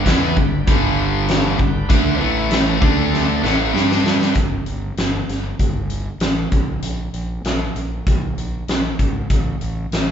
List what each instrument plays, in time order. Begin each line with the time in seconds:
Already playing: tonewheel organ B3 D4 G4 B4
0.06 fingered electric bass E2, overdriven electric guitar E3 B3 E4, kick, snare, closed hi-hat
0.37 fingered electric bass G1, overdriven electric guitar G2 D3, kick
0.67 fingered electric bass G1, overdriven electric guitar G2 D3 G3, kick, closed hi-hat
1.27 tonewheel organ B3 D4 G4 B4, snare, closed hi-hat
1.59 fingered electric bass G1, overdriven electric guitar G2 D3, kick
1.89 fingered electric bass D2, overdriven electric guitar D3 A3 D4, kick, closed hi-hat
2.20 fingered electric bass A1, overdriven electric guitar A2 E3 A3, tonewheel organ A3 E4 A4 E5
2.51 snare, closed hi-hat
2.80 fingered electric bass D2, overdriven electric guitar D3 A3 D4, tonewheel organ A3 D4 A4 D5, kick
3.14 snare
3.43 fingered electric bass A1, overdriven electric guitar A2 E3 A3, tonewheel organ B3 D4 G4 B4, snare
3.73 fingered electric bass G2, overdriven electric guitar G3 D4 G4, snare
3.91 snare
4.06 snare
4.21 snare
4.35 fingered electric bass G1, kick, closed hi-hat
4.66 fingered electric bass G1, closed hi-hat
4.97 fingered electric bass G1, snare, closed hi-hat
5.28 fingered electric bass G1, snare, closed hi-hat
5.59 fingered electric bass G1, kick, closed hi-hat
5.90 closed hi-hat
6.20 fingered electric bass A1, snare, closed hi-hat
6.52 fingered electric bass A#1, kick, closed hi-hat
6.82 fingered electric bass A#1, closed hi-hat
7.13 fingered electric bass A#1, closed hi-hat
7.44 fingered electric bass A#1, snare, closed hi-hat
7.75 fingered electric bass A#1, closed hi-hat
8.06 fingered electric bass A#1, kick, closed hi-hat
8.37 fingered electric bass A#1, closed hi-hat
8.68 fingered electric bass A#1, snare, closed hi-hat
8.99 fingered electric bass G#1, kick, closed hi-hat
9.30 fingered electric bass A1, kick, closed hi-hat
9.61 fingered electric bass A1, closed hi-hat
9.91 fingered electric bass A1, snare, closed hi-hat